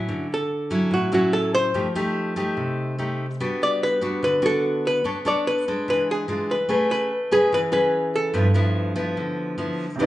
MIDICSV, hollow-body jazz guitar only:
0, 0, Header, 1, 2, 480
1, 0, Start_track
1, 0, Tempo, 412939
1, 109, Time_signature, 4, 2, 24, 8
1, 11694, End_track
2, 0, Start_track
2, 0, Title_t, "Hollow-body jazz guitar"
2, 0, Program_c, 0, 26
2, 392, Note_on_c, 0, 69, 73
2, 1088, Note_on_c, 0, 66, 74
2, 1113, Note_off_c, 0, 69, 0
2, 1316, Note_off_c, 0, 66, 0
2, 1330, Note_on_c, 0, 66, 72
2, 1549, Note_on_c, 0, 69, 77
2, 1567, Note_off_c, 0, 66, 0
2, 1792, Note_off_c, 0, 69, 0
2, 1797, Note_on_c, 0, 72, 90
2, 2241, Note_off_c, 0, 72, 0
2, 4220, Note_on_c, 0, 74, 82
2, 4431, Note_off_c, 0, 74, 0
2, 4456, Note_on_c, 0, 71, 86
2, 4916, Note_off_c, 0, 71, 0
2, 4930, Note_on_c, 0, 71, 83
2, 5168, Note_off_c, 0, 71, 0
2, 5181, Note_on_c, 0, 69, 78
2, 5661, Note_off_c, 0, 69, 0
2, 5661, Note_on_c, 0, 71, 86
2, 5871, Note_off_c, 0, 71, 0
2, 6133, Note_on_c, 0, 74, 72
2, 6357, Note_off_c, 0, 74, 0
2, 6362, Note_on_c, 0, 71, 74
2, 6845, Note_off_c, 0, 71, 0
2, 6859, Note_on_c, 0, 71, 81
2, 7069, Note_off_c, 0, 71, 0
2, 7104, Note_on_c, 0, 68, 69
2, 7570, Note_on_c, 0, 71, 71
2, 7582, Note_off_c, 0, 68, 0
2, 7784, Note_off_c, 0, 71, 0
2, 8035, Note_on_c, 0, 71, 78
2, 8515, Note_on_c, 0, 68, 80
2, 8527, Note_off_c, 0, 71, 0
2, 8760, Note_off_c, 0, 68, 0
2, 8767, Note_on_c, 0, 71, 77
2, 8829, Note_off_c, 0, 71, 0
2, 8983, Note_on_c, 0, 71, 71
2, 9480, Note_on_c, 0, 69, 77
2, 9481, Note_off_c, 0, 71, 0
2, 11105, Note_off_c, 0, 69, 0
2, 11694, End_track
0, 0, End_of_file